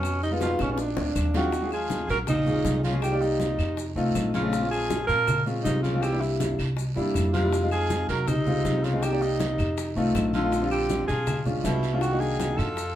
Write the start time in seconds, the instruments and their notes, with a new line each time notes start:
Already playing: upright bass F2, baritone saxophone B2, alto saxophone C#4
0.03 high bongo, high conga, long guiro, claves, maracas
0.22 baritone saxophone C3, alto saxophone D#4, high conga, maracas
0.31 grand piano G#3 B3 D#4 F4
0.40 baritone saxophone B2, alto saxophone F4, high bongo, high conga, short guiro, maracas
0.59 upright bass A#1, baritone saxophone B2, alto saxophone C#4, high bongo, high conga, short guiro, claves, maracas
0.72 baritone saxophone B2, alto saxophone C#4
0.77 baritone saxophone A#2, alto saxophone D4, high bongo, high conga, long guiro, maracas
0.97 upright bass D2, low bongo, high conga, maracas
1.15 upright bass D#2, low bongo, high conga, short guiro, claves, maracas
1.34 baritone saxophone D#3, grand piano G#3 C4 D4 F4, alto saxophone F#4, low bongo, high conga, short guiro, maracas
1.52 high bongo, high conga, long guiro, maracas
1.61 grand piano G#3 C#4 F4 G#4
1.72 baritone saxophone F3, alto saxophone G#4, high conga, claves, maracas
1.90 high bongo, high conga, short guiro, maracas
2.09 upright bass A#1, baritone saxophone F#3, alto saxophone A#4, high bongo, short guiro, maracas
2.27 baritone saxophone A#2, alto saxophone D#4, high bongo, high conga, low conga, long guiro, claves, maracas
2.46 grand piano G#3 C#4 F4 G#4, high bongo, high conga, low conga, maracas
2.64 upright bass C2, high bongo, low bongo, high conga, short guiro, maracas
2.84 baritone saxophone C#3, alto saxophone F4, high bongo, high conga, short guiro, maracas
2.92 grand piano G#3 C#4 F4 G#4
3.02 baritone saxophone D#3, alto saxophone G4, high bongo, high conga, long guiro, claves, maracas
3.12 grand piano A#3 D#4 G4 D5
3.21 baritone saxophone C3, alto saxophone D#4, high conga, maracas
3.40 high bongo, high conga, short guiro, maracas
3.58 upright bass F2, high bongo, high conga, short guiro, claves, maracas
3.77 high bongo, high conga, long guiro, maracas
3.96 upright bass C2, grand piano A3 C4 D#4 F4, high bongo, high conga, maracas
4.15 upright bass A#1, high bongo, low bongo, high conga, short guiro, claves, maracas
4.34 baritone saxophone C#3, alto saxophone F4, high bongo, high conga, short guiro, maracas
4.43 grand piano A3 C4 D#4 F4
4.53 high bongo, long guiro, maracas
4.61 grand piano G#3 C4 C#4 F4
4.71 baritone saxophone F3, alto saxophone G#4, high conga, claves, maracas
4.90 high bongo, high conga, short guiro, maracas
5.07 upright bass A#2, baritone saxophone F3, alto saxophone A#4, high bongo, short guiro, maracas
5.27 high bongo, high conga, low conga, long guiro, claves, maracas
5.46 grand piano G#3 C4 C#4 F4, high bongo, maracas
5.63 upright bass C2, baritone saxophone C3, alto saxophone D#4, high bongo, low bongo, high conga, short guiro, maracas
5.83 baritone saxophone C#3, alto saxophone F4, high bongo, high conga, short guiro, maracas
5.93 grand piano G#3 C4 C#4 F4
6.02 baritone saxophone E3, alto saxophone G4, high bongo, long guiro, claves, maracas
6.12 grand piano G3 A#3 D4 E4
6.21 baritone saxophone C3, alto saxophone E4, high conga, maracas
6.40 high bongo, high conga, short guiro, maracas
6.58 upright bass C2, high bongo, high conga, short guiro, claves, maracas
6.77 high bongo, high conga, long guiro, maracas
6.95 upright bass E2, grand piano G3 A#3 D4 E4, high bongo, high conga, maracas
7.14 upright bass F2, high bongo, low bongo, high conga, short guiro, claves, maracas
7.33 baritone saxophone C3, alto saxophone F4, high bongo, high conga, short guiro, maracas
7.43 grand piano G3 A#3 D4 E4
7.53 high bongo, high conga, long guiro, maracas
7.62 grand piano G#3 C4 D#4 F4
7.71 baritone saxophone F3, alto saxophone G#4, high conga, claves, maracas
7.90 high bongo, high conga, short guiro, maracas
8.08 upright bass C2, baritone saxophone F#3, alto saxophone A#4, high bongo, short guiro, maracas
8.27 baritone saxophone C3, alto saxophone D#4, high bongo, high conga, low conga, long guiro, claves, maracas
8.46 grand piano G#3 C4 D#4 F4, high bongo, high conga, low conga, maracas
8.65 upright bass C2, high bongo, low bongo, high conga, short guiro, maracas
8.84 baritone saxophone C#3, alto saxophone F4, high bongo, short guiro, maracas
8.93 grand piano G#3 C4 D#4 G#4
9.03 baritone saxophone D#3, alto saxophone G4, high bongo, high conga, long guiro, claves, maracas
9.11 grand piano A#3 D#4 G4 D5
9.22 baritone saxophone C3, alto saxophone D#4, high conga, maracas
9.40 high bongo, high conga, short guiro, maracas
9.58 upright bass F2, high bongo, high conga, short guiro, claves, maracas
9.77 high bongo, high conga, long guiro, maracas
9.96 upright bass C2, grand piano A3 C4 D#4 F4, high bongo, high conga, maracas
10.14 upright bass A#1, high bongo, low bongo, high conga, short guiro, claves, maracas
10.33 baritone saxophone D3, alto saxophone F4, high bongo, high conga, short guiro, maracas
10.43 grand piano A3 C4 D#4 F4
10.52 high bongo, high conga, long guiro, maracas
10.61 grand piano G3 C4 D4 F4
10.71 baritone saxophone D3, alto saxophone G4, high conga, claves, maracas
10.89 high bongo, high conga, short guiro, maracas
11.08 upright bass B1, baritone saxophone F3, alto saxophone G#4, high bongo, short guiro, maracas
11.27 high bongo, high conga, low conga, long guiro, claves, maracas
11.45 grand piano G#3 C#4 D4 F4, high bongo, high conga, low conga, maracas
11.63 upright bass C2, baritone saxophone B2, alto saxophone E4, high bongo, low bongo, high conga, short guiro, maracas
11.83 high bongo, short guiro, maracas
11.92 grand piano G#3 C#4 D4 F4
12.01 baritone saxophone D#3, alto saxophone F#4, high bongo, long guiro, claves, maracas
12.11 grand piano A#3 D4 D#4 F#4
12.20 baritone saxophone D#3, alto saxophone G#4, high conga, maracas
12.40 high bongo, high conga, short guiro, maracas
12.58 upright bass F2, baritone saxophone F3, alto saxophone A4, high bongo, short guiro, claves, maracas
12.77 high bongo, high conga, long guiro, maracas